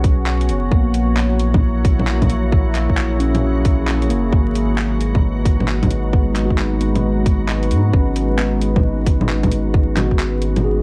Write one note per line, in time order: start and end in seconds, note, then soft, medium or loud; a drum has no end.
0.00 0.50 B1 medium
0.00 10.82 F#3 medium
0.00 0.69 B3 medium
0.00 0.69 C#4 medium
0.00 0.74 C#4 medium
0.00 2.49 F#4 medium
0.00 10.82 F#4 medium
0.00 4.29 C#5 medium
0.00 kick loud
0.00 open hi-hat medium
0.26 clap loud
0.41 closed hi-hat soft
0.49 0.70 F#1 medium
0.49 open hi-hat medium
0.71 2.87 A#1 loud
0.71 1.86 A#3 medium
0.71 4.29 A#3 medium
0.71 4.29 E4 medium
0.71 kick loud
0.94 open hi-hat medium
1.17 clap loud
1.39 open hi-hat medium
1.54 kick loud
1.54 low bongo medium
1.85 kick loud
1.85 open hi-hat medium
1.99 low bongo soft
2.07 clap loud
2.22 kick medium
2.22 closed hi-hat soft
2.22 low bongo medium
2.30 open hi-hat medium
2.52 4.31 G#4 medium
2.52 kick loud
2.75 clap medium
2.75 open hi-hat medium
2.90 4.11 A#1 medium
2.90 kick medium
2.97 clap loud
3.20 4.35 C#4 medium
3.20 open hi-hat medium
3.35 closed hi-hat soft
3.35 low bongo medium
3.65 kick loud
3.65 open hi-hat medium
3.87 clap loud
4.02 closed hi-hat soft
4.10 4.31 F#1 medium
4.10 4.52 A#3 medium
4.10 open hi-hat medium
4.32 6.48 G#1 loud
4.32 10.82 G#3 medium
4.32 10.82 D#4 medium
4.32 10.82 F#4 medium
4.32 10.82 B4 medium
4.32 kick loud
4.55 open hi-hat medium
4.78 clap loud
5.01 open hi-hat medium
5.15 kick loud
5.15 low bongo soft
5.45 kick loud
5.45 open hi-hat medium
5.60 low bongo soft
5.68 clap loud
5.83 kick medium
5.83 closed hi-hat soft
5.83 low bongo medium
5.91 open hi-hat medium
6.13 7.28 B3 medium
6.13 kick loud
6.32 7.42 D#4 medium
6.32 clap medium
6.32 open hi-hat medium
6.45 7.55 F#4 medium
6.50 7.72 G#1 medium
6.50 kick medium
6.58 clap loud
6.81 open hi-hat medium
6.95 closed hi-hat soft
6.95 low bongo medium
7.26 kick loud
7.26 open hi-hat medium
7.49 clap loud
7.63 closed hi-hat soft
7.71 7.92 G#2 medium
7.71 open hi-hat medium
7.93 10.09 G#1 loud
7.93 9.08 C#4 medium
7.93 kick loud
8.16 open hi-hat medium
8.38 9.54 B3 medium
8.38 clap loud
8.61 open hi-hat medium
8.76 kick loud
8.76 low bongo medium
9.06 10.21 D#4 medium
9.06 kick loud
9.06 open hi-hat medium
9.21 low bongo medium
9.29 clap loud
9.43 kick medium
9.43 closed hi-hat soft
9.43 low bongo medium
9.52 open hi-hat medium
9.74 kick loud
9.97 10.82 F#4 medium
9.97 clap medium
9.97 open hi-hat medium
9.97 low bongo medium
10.11 10.82 G#1 medium
10.11 kick medium
10.19 clap loud
10.19 closed hi-hat soft
10.42 open hi-hat medium
10.56 closed hi-hat soft
10.56 low bongo medium
10.64 10.82 G#4 medium